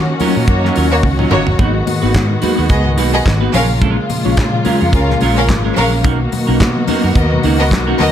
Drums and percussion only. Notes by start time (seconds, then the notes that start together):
0.20 open hi-hat, muted conga, high conga, low conga
0.48 kick, closed hi-hat, muted conga
0.65 snare
0.75 open hi-hat, muted conga
1.03 kick, high tom, high conga
1.19 mid tom
1.31 mid tom, muted conga, low conga
1.47 floor tom
1.59 kick, closed hi-hat, low conga
1.87 open hi-hat, muted conga, high conga
2.14 kick, snare, clap, closed hi-hat, muted conga
2.42 open hi-hat, muted conga, high conga, low conga
2.69 kick, closed hi-hat, muted conga
2.98 open hi-hat, muted conga
3.26 kick, snare, clap, closed hi-hat, high conga
3.54 open hi-hat, muted conga, low conga
3.81 kick, closed hi-hat, muted conga, low conga
4.10 open hi-hat, high conga
4.37 kick, snare, clap, closed hi-hat, muted conga
4.65 open hi-hat, muted conga, high conga, low conga
4.93 kick, closed hi-hat, muted conga
5.10 snare
5.21 open hi-hat, muted conga
5.49 kick, snare, clap, closed hi-hat, muted conga, high conga
5.77 open hi-hat, muted conga, low conga
6.04 kick, closed hi-hat, muted conga, low conga
6.32 open hi-hat, muted conga, high conga
6.60 kick, snare, clap, closed hi-hat, muted conga
6.88 open hi-hat, muted conga, high conga, low conga
7.15 kick, closed hi-hat
7.43 open hi-hat
7.71 kick, snare, clap, closed hi-hat, high conga
7.99 open hi-hat, muted conga, low conga